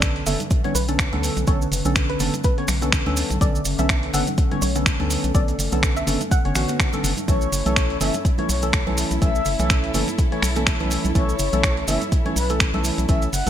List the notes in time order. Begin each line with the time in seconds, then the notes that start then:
Already playing: B1 D3 A3 B3 C#4 A4 B4 D5
0.02 finger snap, kick, closed hi-hat, maracas
0.16 closed hi-hat
0.26 F#1 D3 B3 C#4 A4 E5, open hi-hat, high conga, maracas
0.40 closed hi-hat, low conga, maracas
0.51 kick, closed hi-hat, maracas
0.64 D3 B3 C#4 C#5, closed hi-hat, low conga
0.75 B1 B4, open hi-hat, maracas
0.88 D3 B3 C#4 A4, closed hi-hat, maracas
0.99 finger snap, kick, closed hi-hat, maracas
1.13 D2 D3 B3 C#4 A4, closed hi-hat, low conga
1.23 open hi-hat, maracas
1.37 B1, closed hi-hat, maracas
1.47 B1 D3 B3 C#4 A4 C#5, kick, closed hi-hat, maracas
1.62 maracas
1.72 F#1, open hi-hat, maracas
1.85 B1 D3 B3 C#4 A4, closed hi-hat, maracas
1.96 finger snap, kick, closed hi-hat, maracas
2.10 B4, closed hi-hat
2.20 F#1 D3 B3 C#4 A4, open hi-hat, high conga, maracas
2.34 closed hi-hat, low conga, maracas
2.44 B4, kick, closed hi-hat, maracas
2.58 D3 B3 C#4 C#5, closed hi-hat
2.68 B1, finger snap, open hi-hat, maracas
2.82 D3 B3 C#4 A4, closed hi-hat, high conga, maracas
2.92 finger snap, kick, closed hi-hat, maracas
3.06 D2 D3 B3 C#4 A4, closed hi-hat, low conga
3.17 open hi-hat, maracas
3.30 B1, closed hi-hat, low conga, maracas
3.41 B1 D3 B3 C#4 A4 D5, kick, closed hi-hat, maracas
3.55 maracas
3.65 F#1, open hi-hat, maracas
3.79 B1 D3 B3 C#4 A4 E5, closed hi-hat, maracas
3.89 finger snap, kick, closed hi-hat, maracas
4.03 closed hi-hat
4.13 F#1 D3 B3 C#4 A4 F#5, open hi-hat, high conga, maracas
4.27 closed hi-hat, low conga, maracas
4.38 kick, closed hi-hat, maracas
4.51 D3 B3 C#4 C#5, closed hi-hat, low conga
4.62 B1 C#5, open hi-hat, maracas
4.75 D3 B3 C#4 A4, closed hi-hat, maracas
4.86 finger snap, kick, closed hi-hat, maracas
5.00 D2 D3 B3 C#4 A4, closed hi-hat, low conga
5.10 open hi-hat, maracas
5.24 B1, closed hi-hat, maracas
5.34 B1 D3 B3 C#4 A4 D5, kick, closed hi-hat, maracas
5.48 closed hi-hat, maracas
5.59 F#1, open hi-hat, maracas
5.72 B1 D3 B3 C#4 A4, closed hi-hat, maracas
5.83 finger snap, kick, closed hi-hat, maracas
5.97 E5, closed hi-hat, maracas
6.07 F#1 D3 B3 C#4 A4, open hi-hat, high conga, maracas
6.21 closed hi-hat, low conga, maracas
6.31 F#5, kick, closed hi-hat, maracas
6.45 F#1 D3 B3 C#4 C#5, closed hi-hat
6.55 A1 D3 B3 C#4 F#4, finger snap, open hi-hat, maracas
6.69 closed hi-hat, high conga, maracas
6.80 finger snap, kick, closed hi-hat, maracas
6.93 D3 B3 C#4 A4, closed hi-hat, low conga, maracas
7.04 F#1, open hi-hat, maracas
7.17 closed hi-hat, low conga, maracas
7.28 B1 E3 A3 C#4 E4 A4 C#5, kick, closed hi-hat, maracas
7.41 maracas
7.48 A4
7.52 F#1, open hi-hat, maracas
7.66 B1 E3 A3 C#4 A4, closed hi-hat, maracas
7.76 finger snap, kick, closed hi-hat, maracas
7.90 closed hi-hat
8.01 F#1 E3 A3 C#4 A4 E5, open hi-hat, high conga, maracas
8.14 closed hi-hat, low conga, maracas
8.25 kick, closed hi-hat, maracas
8.38 E3 A3 C#4 C#5, closed hi-hat, low conga
8.49 B1 C#5, open hi-hat, maracas
8.62 E3 A3 C#4 A4, closed hi-hat, maracas
8.73 finger snap, kick, closed hi-hat, maracas
8.87 B1 E3 A3 C#4 A4, closed hi-hat, low conga
8.98 open hi-hat, maracas
9.11 B1, closed hi-hat, maracas
9.21 B1 E3 A3 C#4 A4 E5, kick, closed hi-hat, maracas
9.35 maracas
9.45 F#1, open hi-hat, maracas
9.59 B1 E3 A3 C#4 A4, closed hi-hat, maracas
9.70 finger snap, kick, closed hi-hat, maracas
9.84 closed hi-hat
9.94 F#1 E3 A3 C#4 A4, open hi-hat, high conga, maracas
10.07 closed hi-hat, low conga, maracas
10.19 kick, closed hi-hat, maracas
10.32 E3 A3 C#4 C#5, closed hi-hat
10.42 B1, finger snap, open hi-hat, maracas
10.56 E3 A3 C#4 A4, closed hi-hat, high conga, maracas
10.67 finger snap, kick, closed hi-hat, maracas
10.80 B1 E3 A3 C#4 A4, closed hi-hat, low conga
10.91 open hi-hat, maracas
11.04 B1, closed hi-hat, low conga, maracas
11.15 B1 E3 A3 C#4 A4 C#5, kick, closed hi-hat, maracas
11.29 maracas
11.39 F#1, open hi-hat, maracas
11.53 B1 E3 A3 C#4 A4, closed hi-hat, maracas
11.63 finger snap, kick, closed hi-hat, maracas
11.77 closed hi-hat
11.88 F#1 E3 A3 C#4 A4 E5, open hi-hat, high conga, maracas
12.02 closed hi-hat, low conga, maracas
12.12 kick, closed hi-hat, maracas
12.25 E3 A3 C#4 C#5, closed hi-hat, low conga
12.36 B1 B4, open hi-hat, maracas
12.50 E3 A3 C#4 A4, closed hi-hat, maracas
12.60 finger snap, kick, closed hi-hat, maracas
12.74 B1 E3 A3 C#4 A4, closed hi-hat, low conga
12.84 open hi-hat, maracas
12.98 B1, closed hi-hat, maracas
13.09 B1 E3 A3 C#4 A4 E5, kick, closed hi-hat, maracas
13.22 closed hi-hat, maracas
13.33 F#1 F#5, open hi-hat, maracas
13.46 B1 E3 A3 C#4, closed hi-hat